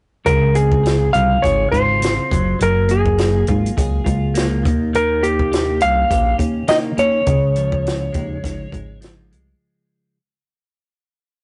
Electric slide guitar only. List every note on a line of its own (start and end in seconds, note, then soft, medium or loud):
0.26 0.56 A#4 medium
0.55 1.10 G#4 medium
1.13 1.44 F5 medium
1.42 1.71 C#5 medium
1.72 2.62 C5 medium
2.63 2.91 A#4 medium
2.91 3.45 G#4 medium
4.96 5.25 A#4 medium
5.23 5.83 G4 medium
5.82 6.36 F5 medium
6.69 6.77 D#5 medium
6.99 8.99 C#5 medium